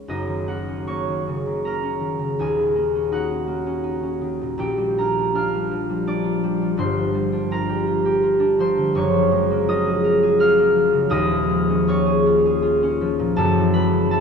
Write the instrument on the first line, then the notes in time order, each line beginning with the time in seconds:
harp
Already playing: F3 B3 C#4 F4 A#4 C#5
0.08 F#1 F#2 D#4 D#5
0.27 D#3
0.48 A#3 F#4 F#5
0.69 C#4
0.87 A#3 C#5 C#6
1.08 D#3
1.27 C#3
1.46 D#3
1.65 A#3 A#4 A#5
1.83 C#4
2.00 D#3
2.19 C#3
2.39 D#1 D#2 G#4 G#5
2.59 D#3
2.76 A#3
2.95 C#4
3.12 D#4 F#4 F#5
3.31 C#4
3.47 A#3
3.66 C#4
3.84 D#4
4.03 C#4
4.21 D#3
4.41 A#2
4.58 A#1 A#2 G4 G5
4.78 G3
4.98 D4 A#4 A#5
5.18 F4
5.35 D4 F5 F6
5.54 G3
5.71 F3
5.89 G3
6.07 D4 D5 D6
6.24 F4
6.44 G3
6.62 F3
6.77 G1 G2 C5 C6
6.98 F3
7.14 G3
7.32 D4
7.51 F4 A#4 A#5
7.69 G4
7.87 F4
8.05 G4
8.23 F4
8.40 D4
8.59 F3 C5 C6
8.77 D3
8.95 F#1 F#2 C#5 C#6
9.14 F3
9.32 G#3
9.51 A#3
9.68 F4 D#5 D#6
9.85 G#4
10.04 A#4
10.23 G#4
10.39 F4 F5 F6
10.58 A#3
10.76 F3
10.93 C#3
11.10 D#1 D#2 D#5 D#6
11.31 F3
11.49 G#3
11.70 C#4
11.88 F4 C#5 C#6
12.06 G#4
12.26 F4
12.46 G#4
12.62 F4
12.83 C#4
13.01 F3
13.19 A#2
13.36 F#1 F#2 A4 A5
13.58 E3
13.73 G#3 B4 B5
13.93 C#4
14.11 E4 A4 A5